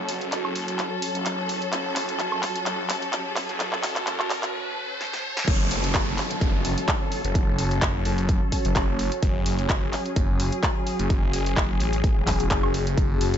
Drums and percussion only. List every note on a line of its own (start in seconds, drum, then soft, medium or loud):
0.09 open hi-hat loud
0.21 closed hi-hat medium
0.32 clap medium
0.32 closed hi-hat medium
0.45 high woodblock medium
0.55 open hi-hat loud
0.68 closed hi-hat medium
0.79 clap medium
0.79 closed hi-hat medium
1.02 open hi-hat loud
1.15 closed hi-hat medium
1.26 clap medium
1.26 closed hi-hat medium
1.49 open hi-hat medium
1.62 closed hi-hat medium
1.73 clap medium
1.73 closed hi-hat medium
1.96 clap medium
1.96 open hi-hat loud
2.09 closed hi-hat soft
2.19 clap medium
2.19 closed hi-hat medium
2.32 high woodblock medium
2.43 clap medium
2.43 open hi-hat medium
2.55 closed hi-hat soft
2.66 clap medium
2.66 closed hi-hat medium
2.90 clap medium
2.90 open hi-hat loud
3.02 closed hi-hat soft
3.13 clap medium
3.13 closed hi-hat medium
3.36 clap medium
3.36 open hi-hat medium
3.49 closed hi-hat medium
3.60 clap medium
3.60 closed hi-hat medium
3.73 clap medium
3.83 clap medium
3.83 open hi-hat loud
3.96 clap medium
3.96 closed hi-hat soft
4.07 clap medium
4.07 closed hi-hat medium
4.20 clap medium
4.20 high woodblock medium
4.30 clap loud
4.30 open hi-hat loud
4.43 clap medium
4.43 closed hi-hat soft
5.01 snare medium
5.13 snare medium
5.37 snare medium
5.48 kick loud
5.48 closed hi-hat medium
5.48 crash loud
5.71 open hi-hat loud
5.84 closed hi-hat medium
5.94 kick loud
5.94 clap loud
5.94 closed hi-hat medium
6.18 clap medium
6.18 open hi-hat medium
6.31 closed hi-hat medium
6.41 kick loud
6.41 closed hi-hat medium
6.65 open hi-hat loud
6.78 closed hi-hat medium
6.88 kick loud
6.88 clap loud
6.88 closed hi-hat medium
7.12 open hi-hat medium
7.24 closed hi-hat medium
7.35 kick loud
7.35 closed hi-hat medium
7.59 open hi-hat loud
7.71 closed hi-hat medium
7.82 kick loud
7.82 clap loud
7.82 closed hi-hat medium
8.05 open hi-hat loud
8.18 closed hi-hat medium
8.29 kick loud
8.29 closed hi-hat medium
8.52 kick medium
8.52 open hi-hat loud
8.65 closed hi-hat medium
8.76 kick loud
8.76 clap loud
8.76 closed hi-hat medium
8.99 open hi-hat medium
9.12 closed hi-hat medium
9.22 kick loud
9.22 closed hi-hat medium
9.46 open hi-hat loud
9.59 closed hi-hat medium
9.69 kick loud
9.69 clap loud
9.69 closed hi-hat medium
9.93 clap medium
9.93 open hi-hat loud
10.06 closed hi-hat medium
10.16 kick loud
10.16 closed hi-hat medium
10.40 open hi-hat loud
10.52 closed hi-hat medium
10.63 kick loud
10.63 clap loud
10.63 closed hi-hat medium
10.87 open hi-hat loud
10.99 closed hi-hat medium
11.10 kick loud
11.10 closed hi-hat medium
11.33 open hi-hat loud
11.46 closed hi-hat soft
11.57 kick loud
11.57 clap loud
11.57 closed hi-hat medium
11.80 open hi-hat loud
11.93 closed hi-hat soft
12.04 kick loud
12.04 closed hi-hat medium
12.27 kick medium
12.27 clap medium
12.27 open hi-hat loud
12.40 closed hi-hat soft
12.51 kick loud
12.51 clap loud
12.51 closed hi-hat medium
12.63 high woodblock medium
12.74 open hi-hat loud
12.87 closed hi-hat soft
12.98 kick loud
12.98 closed hi-hat medium
13.21 open hi-hat loud
13.34 closed hi-hat medium